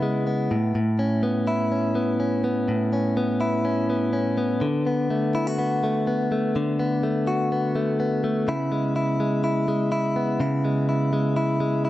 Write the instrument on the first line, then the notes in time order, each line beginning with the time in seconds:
clean electric guitar
Already playing: C#3 B3 E4
0.02 G#3
0.27 B3
0.51 A2
0.75 A2
0.99 C#4
1.23 B3
1.47 E4
1.72 C#4
1.95 B3
2.20 C#4
2.44 B3
2.68 A2
2.93 C#4
3.17 B3
3.41 E4
3.65 C#4
3.90 B3
4.13 C#4
4.38 B3
4.61 D3
4.87 B3
5.10 A3
5.35 E4
5.47 F#4
5.59 B3
5.83 A3
6.07 B3
6.32 A3
6.56 D3
6.79 B3
7.03 A3
7.27 F#4
7.52 B3
7.75 A3
8.00 B3
8.24 A3
8.48 C#3 E4
8.72 G#3
8.96 E4
9.20 G#3
9.44 E4
9.68 G#3
9.92 E4
10.16 B3
10.40 C#3 E4
10.65 G#3
10.89 E4
11.13 G#3
11.37 E4
11.60 G#3
11.85 E4